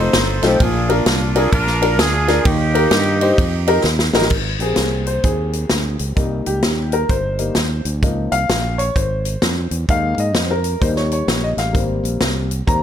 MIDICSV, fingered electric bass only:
0, 0, Header, 1, 2, 480
1, 0, Start_track
1, 0, Key_signature, -4, "major"
1, 0, Tempo, 464037
1, 627, Time_signature, 4, 2, 24, 8
1, 13269, End_track
2, 0, Start_track
2, 0, Title_t, "Fingered electric bass"
2, 0, Program_c, 0, 33
2, 143, Note_on_c, 0, 31, 94
2, 400, Note_off_c, 0, 31, 0
2, 446, Note_on_c, 0, 35, 89
2, 599, Note_off_c, 0, 35, 0
2, 623, Note_on_c, 0, 34, 103
2, 1032, Note_off_c, 0, 34, 0
2, 1097, Note_on_c, 0, 36, 90
2, 1508, Note_off_c, 0, 36, 0
2, 1577, Note_on_c, 0, 34, 97
2, 2056, Note_off_c, 0, 34, 0
2, 2056, Note_on_c, 0, 38, 90
2, 2466, Note_off_c, 0, 38, 0
2, 2541, Note_on_c, 0, 39, 107
2, 2949, Note_off_c, 0, 39, 0
2, 3011, Note_on_c, 0, 43, 85
2, 3423, Note_off_c, 0, 43, 0
2, 3499, Note_on_c, 0, 41, 101
2, 3908, Note_off_c, 0, 41, 0
2, 3970, Note_on_c, 0, 39, 98
2, 4230, Note_off_c, 0, 39, 0
2, 4279, Note_on_c, 0, 33, 89
2, 4432, Note_off_c, 0, 33, 0
2, 4453, Note_on_c, 0, 32, 100
2, 4712, Note_off_c, 0, 32, 0
2, 4750, Note_on_c, 0, 34, 82
2, 4908, Note_off_c, 0, 34, 0
2, 4939, Note_on_c, 0, 36, 88
2, 5348, Note_off_c, 0, 36, 0
2, 5422, Note_on_c, 0, 39, 89
2, 5830, Note_off_c, 0, 39, 0
2, 5909, Note_on_c, 0, 38, 77
2, 6162, Note_off_c, 0, 38, 0
2, 6203, Note_on_c, 0, 37, 72
2, 6356, Note_off_c, 0, 37, 0
2, 6378, Note_on_c, 0, 36, 96
2, 6636, Note_off_c, 0, 36, 0
2, 6691, Note_on_c, 0, 37, 84
2, 6841, Note_off_c, 0, 37, 0
2, 6864, Note_on_c, 0, 39, 78
2, 7272, Note_off_c, 0, 39, 0
2, 7338, Note_on_c, 0, 31, 88
2, 7749, Note_off_c, 0, 31, 0
2, 7827, Note_on_c, 0, 39, 85
2, 8082, Note_off_c, 0, 39, 0
2, 8121, Note_on_c, 0, 38, 88
2, 8276, Note_off_c, 0, 38, 0
2, 8303, Note_on_c, 0, 37, 97
2, 8560, Note_off_c, 0, 37, 0
2, 8605, Note_on_c, 0, 36, 86
2, 8759, Note_off_c, 0, 36, 0
2, 8785, Note_on_c, 0, 34, 85
2, 9194, Note_off_c, 0, 34, 0
2, 9266, Note_on_c, 0, 32, 96
2, 9675, Note_off_c, 0, 32, 0
2, 9748, Note_on_c, 0, 41, 90
2, 10004, Note_off_c, 0, 41, 0
2, 10045, Note_on_c, 0, 40, 80
2, 10199, Note_off_c, 0, 40, 0
2, 10228, Note_on_c, 0, 39, 95
2, 10484, Note_off_c, 0, 39, 0
2, 10527, Note_on_c, 0, 44, 81
2, 10705, Note_off_c, 0, 44, 0
2, 10705, Note_on_c, 0, 41, 76
2, 11114, Note_off_c, 0, 41, 0
2, 11188, Note_on_c, 0, 39, 102
2, 11597, Note_off_c, 0, 39, 0
2, 11664, Note_on_c, 0, 34, 82
2, 11922, Note_off_c, 0, 34, 0
2, 11970, Note_on_c, 0, 33, 83
2, 12122, Note_off_c, 0, 33, 0
2, 12151, Note_on_c, 0, 32, 99
2, 12406, Note_off_c, 0, 32, 0
2, 12449, Note_on_c, 0, 34, 82
2, 12602, Note_off_c, 0, 34, 0
2, 12633, Note_on_c, 0, 36, 79
2, 13039, Note_off_c, 0, 36, 0
2, 13110, Note_on_c, 0, 39, 88
2, 13269, Note_off_c, 0, 39, 0
2, 13269, End_track
0, 0, End_of_file